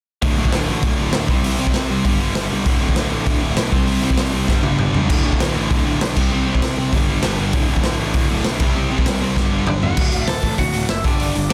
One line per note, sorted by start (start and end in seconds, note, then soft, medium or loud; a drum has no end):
0.22 0.36 D1 loud
0.22 0.37 D2 medium
0.22 0.37 A2 loud
0.22 0.36 D3 loud
0.22 kick loud
0.22 open hi-hat medium
0.37 0.52 D1 medium
0.37 0.52 D2 medium
0.37 0.53 A2 medium
0.37 0.53 D3 medium
0.45 kick medium
0.52 0.67 D1 medium
0.52 0.68 D2 medium
0.52 0.67 A2 loud
0.52 0.67 D3 loud
0.52 snare loud
0.52 open hi-hat medium
0.67 0.82 A1 loud
0.67 0.82 D2 medium
0.67 0.83 A2 medium
0.67 0.83 D3 medium
0.82 0.98 D1 loud
0.82 0.99 D2 medium
0.82 0.98 A2 medium
0.82 0.98 D3 loud
0.82 kick loud
0.82 open hi-hat medium
0.98 1.13 D1 medium
0.98 1.13 D2 medium
0.98 1.13 A2 medium
0.98 1.14 D3 loud
1.13 1.28 D1 medium
1.13 1.28 D2 loud
1.13 1.29 A2 loud
1.13 1.29 D3 loud
1.13 snare loud
1.13 open hi-hat medium
1.28 1.43 C2 medium
1.28 1.44 C3 loud
1.28 1.44 G3 loud
1.28 1.43 C4 loud
1.28 kick loud
1.43 1.57 C2 medium
1.43 1.58 C3 medium
1.43 1.59 G3 medium
1.43 1.59 C4 loud
1.43 open hi-hat medium
1.58 1.73 C2 medium
1.58 1.74 C3 medium
1.58 1.74 G3 medium
1.58 1.73 C4 medium
1.67 kick medium
1.74 1.89 C2 medium
1.74 1.89 C3 medium
1.74 1.89 G3 medium
1.74 1.90 C4 loud
1.74 snare loud
1.74 open hi-hat medium
1.90 2.04 C2 medium
1.90 2.04 C3 medium
1.90 2.05 G3 medium
1.90 2.05 C4 loud
2.05 2.34 G1 loud
2.05 2.20 G2 medium
2.05 2.20 D3 medium
2.05 2.19 G3 loud
2.05 kick loud
2.05 open hi-hat medium
2.21 2.34 G2 medium
2.21 2.35 D3 loud
2.21 2.35 G3 loud
2.35 2.50 G1 loud
2.35 2.51 G2 loud
2.35 2.50 D3 loud
2.35 2.49 G3 loud
2.35 snare loud
2.35 open hi-hat medium
2.51 2.65 C2 medium
2.51 2.66 G2 medium
2.51 2.65 D3 medium
2.51 2.65 G3 loud
2.66 2.80 D1 loud
2.66 2.81 D2 medium
2.66 2.81 A2 medium
2.66 2.80 D3 loud
2.66 kick loud
2.66 open hi-hat medium
2.82 2.96 D1 medium
2.82 2.95 D2 medium
2.82 2.96 A2 medium
2.82 2.96 D3 medium
2.89 kick medium
2.96 3.11 D1 medium
2.96 3.11 D2 medium
2.96 3.11 A2 loud
2.96 3.10 D3 loud
2.96 snare loud
2.96 open hi-hat medium
3.11 3.26 A1 medium
3.11 3.25 D2 medium
3.11 3.26 A2 medium
3.11 3.26 D3 loud
3.26 3.41 D1 medium
3.26 3.41 D2 loud
3.26 3.41 A2 loud
3.26 3.41 D3 loud
3.26 kick loud
3.26 open hi-hat medium
3.42 3.57 D1 medium
3.42 3.56 D2 medium
3.42 3.56 A2 medium
3.42 3.57 D3 loud
3.57 3.71 B1 medium
3.57 3.71 D2 medium
3.57 3.72 A2 loud
3.57 3.72 D3 loud
3.57 snare loud
3.57 open hi-hat medium
3.72 3.86 C2 medium
3.72 3.87 C3 medium
3.72 3.86 G3 loud
3.72 3.86 C4 loud
3.72 kick loud
3.87 4.02 C2 loud
3.87 4.02 C3 medium
3.87 4.02 G3 loud
3.87 4.02 C4 loud
3.87 open hi-hat medium
4.03 4.17 C2 medium
4.03 4.17 C3 medium
4.03 4.17 G3 medium
4.03 4.17 C4 medium
4.10 kick medium
4.17 4.33 C2 medium
4.17 4.31 C3 medium
4.17 4.32 G3 loud
4.17 4.32 C4 loud
4.17 snare loud
4.17 open hi-hat medium
4.33 4.47 C2 loud
4.33 4.47 C3 medium
4.33 4.48 G3 medium
4.33 4.48 C4 medium
4.48 4.77 G1 medium
4.48 4.63 G2 loud
4.48 4.63 D3 medium
4.48 4.62 G3 loud
4.48 kick loud
4.48 snare medium
4.63 4.77 G2 medium
4.63 4.78 D3 medium
4.63 4.78 G3 medium
4.63 high tom medium
4.78 4.94 G1 loud
4.78 4.93 G2 medium
4.78 4.93 D3 loud
4.78 4.92 G3 loud
4.78 mid tom medium
4.94 5.09 C#2 medium
4.94 5.08 G2 medium
4.94 5.08 D3 medium
4.94 5.08 G3 loud
4.94 floor tom medium
5.08 5.24 D1 medium
5.08 5.24 D2 medium
5.08 5.24 A2 loud
5.08 5.23 D3 medium
5.08 kick loud
5.08 crash loud
5.24 5.40 D1 medium
5.24 5.38 D2 medium
5.24 5.39 A2 medium
5.24 5.39 D3 medium
5.33 kick medium
5.40 5.55 D1 medium
5.40 5.55 D2 medium
5.40 5.55 A2 medium
5.40 5.54 D3 loud
5.40 snare loud
5.40 open hi-hat medium
5.56 5.70 A1 medium
5.56 5.69 D2 medium
5.56 5.69 A2 medium
5.56 5.70 D3 loud
5.70 5.85 D1 loud
5.70 5.85 D2 medium
5.70 5.85 A2 medium
5.70 5.84 D3 loud
5.70 kick loud
5.70 open hi-hat medium
5.86 6.01 D1 medium
5.86 6.00 D2 medium
5.86 6.01 A2 medium
5.86 6.01 D3 medium
6.01 6.16 B1 medium
6.01 6.16 D2 loud
6.01 6.16 A2 loud
6.01 6.16 D3 loud
6.01 snare loud
6.01 open hi-hat medium
6.16 6.31 C2 medium
6.16 6.31 C3 loud
6.16 6.31 G3 loud
6.16 6.31 C4 loud
6.16 kick loud
6.16 crash medium
6.32 6.46 C2 loud
6.32 6.46 C3 medium
6.32 6.46 G3 medium
6.32 6.47 C4 loud
6.47 6.61 C2 medium
6.47 6.62 C3 medium
6.47 6.61 G3 medium
6.47 6.61 C4 medium
6.55 kick medium
6.62 6.77 C2 medium
6.62 6.77 C3 medium
6.62 6.77 G3 medium
6.62 6.78 C4 loud
6.62 snare loud
6.62 open hi-hat medium
6.78 6.92 C2 loud
6.78 6.92 C3 medium
6.78 6.92 G3 medium
6.78 6.92 C4 loud
6.92 7.21 G1 medium
6.92 7.08 G2 loud
6.92 7.07 D3 loud
6.92 7.07 G3 loud
6.92 kick loud
6.92 open hi-hat medium
7.08 7.22 G2 medium
7.08 7.23 D3 loud
7.08 7.23 G3 medium
7.23 7.38 G1 loud
7.23 7.38 G2 medium
7.23 7.38 D3 loud
7.23 7.37 G3 loud
7.23 snare loud
7.23 open hi-hat medium
7.38 7.53 G1 medium
7.38 7.53 G2 medium
7.38 7.53 D3 medium
7.38 7.52 G3 medium
7.53 7.68 D1 loud
7.53 7.68 D2 medium
7.53 7.67 A2 medium
7.53 7.67 D3 loud
7.53 kick loud
7.53 open hi-hat medium
7.68 7.83 D1 medium
7.68 7.82 D2 medium
7.68 7.83 A2 medium
7.68 7.83 D3 loud
7.76 kick medium
7.83 7.99 D1 medium
7.83 7.99 D2 medium
7.83 7.98 A2 medium
7.83 7.98 D3 medium
7.83 snare loud
7.83 open hi-hat medium
7.99 8.14 A1 medium
7.99 8.12 D2 medium
7.99 8.13 A2 medium
7.99 8.14 D3 medium
8.14 8.29 D1 loud
8.14 8.28 D2 medium
8.14 8.28 A2 medium
8.14 8.27 D3 loud
8.14 kick loud
8.14 open hi-hat medium
8.29 8.45 D1 medium
8.29 8.43 D2 medium
8.29 8.43 A2 medium
8.29 8.44 D3 medium
8.44 8.60 B1 medium
8.44 8.59 D2 medium
8.44 8.59 A2 loud
8.44 8.59 D3 loud
8.44 snare loud
8.44 open hi-hat medium
8.59 8.74 C2 medium
8.59 8.75 C3 medium
8.59 8.74 G3 loud
8.59 8.74 C4 loud
8.59 kick loud
8.59 crash loud
8.75 8.90 C2 loud
8.75 8.89 C3 medium
8.75 8.90 G3 loud
8.75 8.90 C4 loud
8.90 9.05 C2 medium
8.90 9.06 C3 medium
8.90 9.05 G3 medium
8.90 9.04 C4 loud
8.98 kick medium
9.05 9.20 C2 medium
9.05 9.20 C3 medium
9.05 9.20 G3 medium
9.05 9.21 C4 medium
9.05 snare loud
9.05 open hi-hat medium
9.21 9.36 C2 medium
9.21 9.35 C3 medium
9.21 9.36 G3 medium
9.21 9.36 C4 medium
9.36 9.65 G1 medium
9.36 9.51 G2 loud
9.36 9.51 D3 medium
9.36 9.50 G3 loud
9.36 kick loud
9.36 snare medium
9.51 9.66 G2 medium
9.51 9.67 D3 medium
9.51 9.67 G3 loud
9.67 9.81 G1 medium
9.67 9.82 G2 medium
9.67 9.82 D3 medium
9.67 9.81 G3 loud
9.67 9.74 D4 medium
9.67 9.73 D5 medium
9.67 mid tom medium
9.82 9.97 G1 medium
9.82 9.97 G2 medium
9.82 9.97 D3 medium
9.82 9.96 G3 loud
9.82 10.26 F#4 medium
9.82 10.30 F#5 medium
9.82 floor tom medium
9.97 10.08 D1 medium
9.97 10.11 D2 medium
9.97 10.12 A2 medium
9.97 10.13 D3 loud
9.97 kick loud
9.97 crash loud
10.12 10.23 D1 medium
10.12 10.26 D2 medium
10.12 10.27 A2 medium
10.12 open hi-hat medium
10.27 10.38 D1 medium
10.27 10.42 D2 medium
10.27 10.42 A2 medium
10.27 10.57 A4 medium
10.27 10.56 A5 medium
10.27 snare loud
10.27 open hi-hat medium
10.42 10.53 A1 medium
10.42 10.57 D2 medium
10.42 10.57 A2 medium
10.42 kick medium
10.42 open hi-hat medium
10.58 10.69 D1 loud
10.58 10.72 D2 medium
10.58 10.72 A2 medium
10.58 10.88 F#4 medium
10.58 10.90 F#5 medium
10.58 kick medium
10.58 open hi-hat medium
10.73 10.84 D1 medium
10.73 10.87 D2 medium
10.73 10.88 A2 medium
10.73 open hi-hat medium
10.89 10.99 F#1 medium
10.89 11.03 D2 medium
10.89 11.03 A2 medium
10.89 11.05 E4 medium
10.89 11.04 E5 medium
10.89 snare loud
10.89 open hi-hat medium
11.04 11.15 G1 medium
11.04 11.19 G2 loud
11.04 11.19 D3 loud
11.04 11.19 G3 loud
11.04 11.48 D4 medium
11.04 11.48 D5 medium
11.04 kick loud
11.04 open hi-hat medium
11.20 11.30 G1 medium
11.20 11.34 G2 medium
11.20 11.34 D3 medium
11.20 11.35 G3 medium
11.20 open hi-hat medium
11.35 11.46 G1 medium
11.35 11.49 G2 medium
11.35 11.49 D3 medium
11.35 open hi-hat medium
11.50 11.53 D5 medium